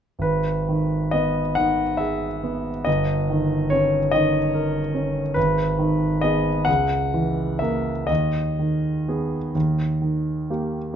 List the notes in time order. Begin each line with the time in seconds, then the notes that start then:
0.19 G#1 B4
0.69 D#3
1.11 B3 D#5
1.55 D#3 F#5
1.97 G#4 E5
2.43 B3
2.85 G1 D#5
3.30 D#3
3.70 C#4 C#5
4.11 D#3 D#5
4.54 A#4
4.94 C#4
5.34 G#1 B4
5.79 D#3
6.21 B3 G#4 D#5
6.65 C#2 F#5
7.14 E3
7.59 A#3 A#4 E5
8.07 D#2 D#5
8.59 D#3
9.08 B3 G#4
9.55 D#2
10.02 D#3
10.50 A#3 G4